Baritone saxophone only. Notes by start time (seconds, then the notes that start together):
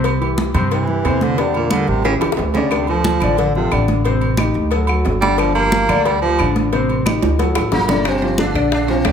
0.72 E3
1.23 D3
1.40 C3
1.56 A#2
1.72 D3
1.89 C3
2.05 C#3
2.54 C#3
2.72 C3
2.89 F3
3.38 D3
3.56 C3
5.21 G3
5.39 F3
5.55 A#3
6.05 G3
6.21 F3
7.73 A#2
8.07 C3
8.41 D3
8.74 D3
8.90 C3